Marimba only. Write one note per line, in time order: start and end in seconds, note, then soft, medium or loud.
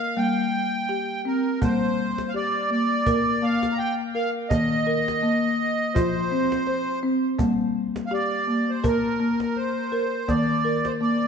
0.00 0.14 D#3 medium
0.00 0.17 A#4 medium
0.17 1.59 G3 medium
0.17 0.89 A#3 medium
0.89 1.25 G4 medium
1.25 1.62 C4 medium
1.62 3.04 G3 medium
1.62 2.34 A#3 medium
2.34 2.70 G4 medium
2.70 3.05 A#3 medium
3.06 3.41 A#3 medium
3.06 3.43 A#4 medium
3.42 4.15 A#3 medium
4.15 4.51 A#4 medium
4.50 5.92 D#3 medium
4.50 4.87 A#3 medium
4.87 5.23 A#4 medium
5.23 5.95 A#3 medium
5.95 7.37 F3 medium
5.95 6.31 F4 medium
6.32 6.68 C4 medium
6.67 7.04 C5 medium
7.03 7.40 C4 medium
7.39 8.81 G3 medium
7.39 8.12 A#3 medium
8.11 8.48 G4 medium
8.47 8.82 A#3 medium
8.84 9.19 A#3 medium
8.84 9.20 A#4 medium
9.20 9.92 A#3 medium
9.92 10.29 A#4 medium
10.28 11.28 D#3 medium
10.28 10.65 A#3 medium
10.65 11.01 A#4 medium
11.01 11.28 A#3 medium